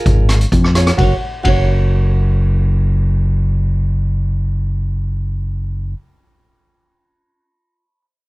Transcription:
Already playing: F4 G#4 A#4 F5
0.06 G#1, kick, closed hi-hat
0.29 cross-stick, closed hi-hat
0.41 closed hi-hat
0.52 F2, kick, closed hi-hat
0.64 cross-stick
0.75 F4 G#4 C#5, cross-stick, closed hi-hat
0.87 cross-stick, closed hi-hat
0.97 F#1 F#4 A#4 F#5, kick, ride
1.02 C#5
1.43 F#1 F#4 A#4 F#5, kick, ride
1.48 C#5

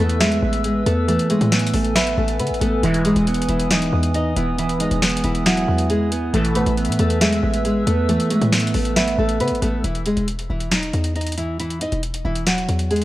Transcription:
Already playing: E3 A3 B3 B4 E5 E6
0.00 E2 A3 A4
0.09 closed hi-hat
0.20 G#3 G#4 E5, snare, closed hi-hat
0.32 closed hi-hat
0.42 A1
0.53 closed hi-hat
0.64 G#3 G#4, closed hi-hat
0.86 E2 A3 B3 A4, closed hi-hat
1.08 E3 A3 A4 G#5, closed hi-hat
1.19 closed hi-hat
1.30 G#3 A3 G#4, closed hi-hat
1.41 A2, closed hi-hat
1.52 B3, snare, closed hi-hat
1.59 closed hi-hat
1.67 closed hi-hat
1.74 A1 A3 A4, open hi-hat
1.84 closed hi-hat
1.95 B3 B4 E5, snare, closed hi-hat
2.07 closed hi-hat
2.18 A1 A3 A4
2.28 closed hi-hat
2.40 C#3 B3 B4, closed hi-hat
2.47 A1, closed hi-hat
2.54 closed hi-hat
2.61 A1 A3 B3 A4, closed hi-hat
2.83 E1 G#2 E3 G#3 E4 D#6, closed hi-hat
2.94 closed hi-hat
3.05 G#3 G#4, closed hi-hat
3.16 E1, closed hi-hat
3.27 B3, closed hi-hat
3.34 closed hi-hat
3.42 closed hi-hat
3.49 E1 E3 E4, closed hi-hat
3.60 closed hi-hat
3.71 E3 D#4 D#5, snare, closed hi-hat
3.82 closed hi-hat
3.93 E2
4.03 closed hi-hat
4.15 D#4 D#5, closed hi-hat
4.37 E1 E3 B3 E4, closed hi-hat
4.59 E3 E4, closed hi-hat
4.69 closed hi-hat
4.80 G#3 D#4 D#5, closed hi-hat
4.91 E1, closed hi-hat
5.02 B3, snare, closed hi-hat
5.10 closed hi-hat
5.17 closed hi-hat
5.24 E1 E3 E4, closed hi-hat
5.35 closed hi-hat
5.46 F#3 E4 F#4, snare, closed hi-hat
5.57 closed hi-hat
5.68 E2
5.78 closed hi-hat
5.90 G#3 G#4, closed hi-hat
6.12 B3, closed hi-hat
6.33 A1 B2 E3 A3 A4 B4 E5 E6, closed hi-hat
6.45 closed hi-hat
6.55 A3 B3 B4, closed hi-hat
6.66 A1, closed hi-hat
6.77 B3, closed hi-hat
6.85 A2, closed hi-hat
6.92 closed hi-hat
6.99 E2 A3 A4, closed hi-hat
7.10 closed hi-hat
7.21 G#3 G#4 E5, snare, closed hi-hat
7.32 closed hi-hat
7.43 A1
7.54 closed hi-hat
7.65 G#3 G#4, closed hi-hat
7.87 E2 A3 B3 A4, closed hi-hat
8.08 E3 A3 A4, closed hi-hat
8.20 closed hi-hat
8.31 G#3 A3 G#4, closed hi-hat
8.42 A2, closed hi-hat
8.53 B3, snare, closed hi-hat
8.60 closed hi-hat
8.67 closed hi-hat
8.74 A1 A3 A4, open hi-hat
8.85 closed hi-hat
8.96 B3 B4 E5, snare, closed hi-hat
9.08 closed hi-hat
9.18 A1 A3 A4
9.29 closed hi-hat
9.40 C#3 B3 B4, closed hi-hat
9.48 A1, closed hi-hat
9.55 closed hi-hat
9.62 A1 A3 B3 A4, closed hi-hat
9.84 E1 E3 E4, closed hi-hat
9.95 closed hi-hat
10.06 G#3 G#4, closed hi-hat
10.17 E1, closed hi-hat
10.28 closed hi-hat
10.39 closed hi-hat
10.50 E1 E3 E4
10.60 closed hi-hat
10.71 D#4 D#5, snare, closed hi-hat
10.83 closed hi-hat
10.93 E2, closed hi-hat
11.04 closed hi-hat
11.15 D#4 D#5, closed hi-hat
11.21 closed hi-hat
11.26 closed hi-hat
11.32 closed hi-hat
11.37 E3 E4, closed hi-hat
11.59 E3 E4, closed hi-hat
11.70 closed hi-hat
11.81 D#4 D#5, closed hi-hat
11.92 E1, closed hi-hat
12.03 closed hi-hat
12.14 closed hi-hat
12.25 E1 E3 E4
12.36 closed hi-hat
12.47 F#3 F#4, snare, closed hi-hat
12.58 closed hi-hat
12.69 E2, closed hi-hat
12.79 closed hi-hat
12.91 G#3 G#4, closed hi-hat
12.96 closed hi-hat

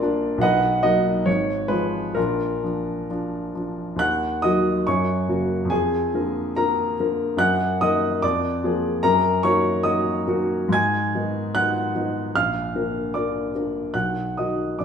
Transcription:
Already playing: A#1 A#3 D4 F4 A#4 D5 F5
0.02 A#3 D4
0.38 B1 F#5
0.42 B4 D#5
0.83 F#3 A#3 D#4 D#5
1.26 G#1 C#5
1.68 F3 G#3 F4 B4
2.15 A#1 D4 F4 A#4
2.63 F3 D4
3.10 F3 D4
3.54 F3 D4
3.96 D#2 F#6
4.00 F#5
4.42 D#3 F#3 F#4 D#5 D#6
4.87 F#2 C#5 C#6
5.29 C#3 A#3 F#4
5.65 F2
5.70 G#4 G#5
6.14 D3 A#3 A#4
6.56 D3 A#3 A#4 A#5
7.00 D3 A#3 A#4
7.37 F#2 F#5 F#6
7.81 D#3 A#3 A#4 D#5 D#6
8.22 F2 D5 D6
8.64 F3 A#3 G#4
9.03 F#2 A#4 A#5
9.43 D#3 A#3 F#4 C#5 C#6
9.83 D#3 A#3 F#4 D#5 D#6
10.28 D#3 A#3 F#4
10.69 G#2 G#6
10.74 G#5
11.15 D#3 B3 D#4
11.55 D#3 B3 D#4 F#5 F#6
11.95 D#3 B3 D#4
12.36 A#1 F5 F6
12.75 D3 A#3 A#4
13.14 D3 A#3 A#4 D5 D6
13.55 D3 A#3 A#4
13.94 B1 F#5 F#6
14.37 D#3 D#4 F#4 D#5 D#6
14.79 A#1 D5 D6

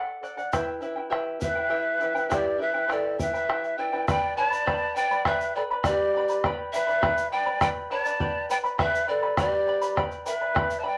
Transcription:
Already playing: A4 D5 F#5
0.23 A4 D5 F#5, bombo rim, shaker
0.37 D5 F#5, shaker
0.52 E4 G4 B4 E5 G5, bombo rim, bombo low, shaker
0.68 bombo rim
0.81 E4 B4 E5 G5, shaker
0.96 E4 B4 G5, bombo rim
1.10 E4 G4 B4 E5 G5, bombo rim
1.40 E4 B4 C5 E5 G5, bombo low, shaker
1.47 B4
1.55 E4 B4 G5
1.70 E4 G4 B4 E5 G5
2.00 E4 B4 E5 G5, bombo rim, shaker
2.15 E4 B4 G5, shaker
2.29 E4 G4 B4 D5 E5 G5, bombo rim, bombo low, shaker
2.58 E4 B4 E5 G5
2.62 B4
2.74 E4 B4 G5, bombo rim
2.88 E4 G4 B4 D5 E5 G5, bombo rim, shaker
2.93 A4
3.18 E4 B4 E5 G5, bombo rim, bombo low, shaker
3.33 E4 B4 G5, shaker
3.49 E4 G4 B4 E5 G5, bombo rim
3.64 bombo rim, shaker
3.78 E4 B4 D5 E5 G5, bombo rim
3.93 E4 B4 G5
4.08 G4 B4 D5 G5 B5, bombo rim, bombo low, shaker
4.37 B4 C#5 D5 G5 A5 B5, bombo rim
4.50 B4 D5 B5, shaker
4.66 G4 B4 D5 G5 B5, bombo rim, bombo low
4.96 B4 D5 G5 B5, shaker
5.11 B4 D5 B5, bombo rim, shaker
5.25 G4 B4 D5 E5 G5 B5, bombo rim, bombo low
5.40 shaker
5.55 A4 B4 D5 G5 B5, bombo rim
5.70 B4 D5 B5, bombo rim
5.84 G4 B4 D5 G5 B5, bombo rim, bombo low, shaker
6.14 B4 D5 G5 B5, bombo rim
6.29 B4 D5 B5, shaker
6.44 G4 B4 D5 G5 B5, bombo rim, bombo low
6.72 B4 C5 D5 E5 G5 B5, shaker
6.77 B4
6.87 B4 D5 B5, bombo rim, shaker
7.01 G4 B4 D5 G5 B5, bombo rim, bombo low
7.18 shaker
7.32 B4 D5 G5 B5, bombo rim
7.46 B4 D5 B5, bombo rim
7.61 G4 B4 D5 G5 B5, bombo rim, bombo low, shaker
7.90 B4 D5 G5 A5 B5, bombo rim
8.05 B4 D5 B5, shaker
8.20 G4 B4 D5 G5 B5, bombo low
8.49 B4 D5 G5 B5, shaker
8.64 B4 D5 B5, bombo rim, shaker
8.78 G4 B4 D5 E5 G5 B5, bombo rim, bombo low
8.95 shaker
9.08 A4 B4 D5 G5 B5, bombo rim
9.23 B4 D5 B5, bombo rim
9.37 G4 B4 D5 G5 B5, bombo rim, bombo low, shaker
9.53 bombo rim
9.67 B4 D5 G5 B5, bombo rim
9.81 B4 D5 B5, bombo rim, shaker
9.96 G4 B4 D5 G5 B5, bombo rim, bombo low
10.11 bombo rim, shaker
10.26 B4 D5 E5 G5 B5, bombo rim, shaker
10.41 B4 D5 B5
10.55 G4 B4 D5 G5 B5, bombo rim, bombo low
10.70 shaker
10.80 D5 E5 G5 A5
10.84 B4 G5 B5, bombo rim
10.88 D5

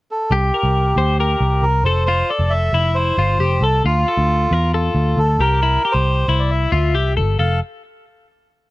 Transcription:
0.11 A4
0.31 C2 G4
0.54 A#4
0.63 C2
0.96 D2 C5
1.18 G4 A#4
1.41 C2
1.62 C2 A#4
1.83 F1 A4 C5
2.06 F4 C5
2.30 A4 D5
2.39 F1
2.50 E5
2.73 F1 E4
2.95 C5
3.18 G1 F4
3.39 F1 G4
3.61 C2 A4
3.85 D2 F4
4.08 A4
4.17 D2
4.51 E2 A#4
4.74 F4 A4
4.95 D2
5.17 D2 A4
5.39 C2 G4 A#4
5.63 E4
5.85 G4
5.92 C2 C5
6.28 C2 E4
6.39 D5
6.51 E5
6.72 D2 F4
6.95 C2 G4
7.17 G1 A4
7.39 F1 A4 F5

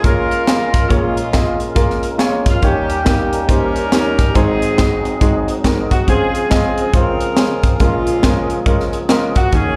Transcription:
Already playing: C#2 C#3 G#3 C#4 F4 A#4
0.03 A#3 F4 G#4 A#4 C#5, kick, closed hi-hat
0.31 closed hi-hat
0.47 A#3 F4 G#4 A#4, snare, closed hi-hat
0.74 kick, snare, closed hi-hat
0.89 A#1 A#2 G#3 A#3 C#4 F4 G#4 C#5, kick, closed hi-hat
1.17 closed hi-hat
1.33 A#3 F4 G#4 D#5, kick, snare, closed hi-hat
1.60 closed hi-hat
1.75 A#3 F4 G#4 A#4, kick, closed hi-hat
1.90 snare
2.03 closed hi-hat
2.18 A#3 F4 G#4 C#5, snare, closed hi-hat
2.46 F4, kick, snare, closed hi-hat
2.62 D#2 D#3 G3 A#3 C#4 D#4 G4 C#5, kick, closed hi-hat
2.90 closed hi-hat
3.05 A#3 C#4 D#4 G4 A#4, kick, snare, closed hi-hat
3.33 closed hi-hat
3.48 A#3 C#4 D#4 G4 A#4 C5, kick, closed hi-hat
3.76 closed hi-hat
3.92 A#3 D#4 G4 C#5, snare, closed hi-hat
4.19 kick, snare, closed hi-hat
4.35 G#1 G#2 F#3 G#3 C4 D#4 F#4 G#4 C5, kick, closed hi-hat
4.62 closed hi-hat
4.77 G#3 D#4 F#4 D#5, kick, snare, closed hi-hat
5.05 closed hi-hat
5.21 G#3 D#4 F#4 G#4, kick, closed hi-hat
5.48 closed hi-hat
5.64 G#3 D#4 F#4 A#4, kick, snare, closed hi-hat
5.91 F#4, kick, closed hi-hat
6.07 C#2 C#3 F3 G#3 C4 C#4 F4 G#4 C5, kick, closed hi-hat
6.35 closed hi-hat
6.50 G#3 C4 C#4 F4 G#4 D#5, kick, snare, closed hi-hat
6.78 closed hi-hat
6.93 G#3 C#4 F4 A#4 C5, kick, closed hi-hat
7.21 closed hi-hat
7.37 G#3 C#4 F4 G#4, snare, closed hi-hat
7.63 kick, closed hi-hat
7.79 A#1 A#2 F3 G#3 A#3 C#4 F4 A#4, kick, closed hi-hat
8.07 closed hi-hat
8.22 G#3 C#4 F4 A#4, kick, snare, closed hi-hat
8.50 closed hi-hat
8.66 G#3 C#4 F4 A#4, kick, closed hi-hat
8.80 snare
8.93 closed hi-hat
9.09 G#3 C#4 F4 A#4, snare, closed hi-hat
9.35 F#4, kick, closed hi-hat
9.52 D#2 D#3 A#3 C#4 D#4 F#4 G#4 C#5, kick, closed hi-hat

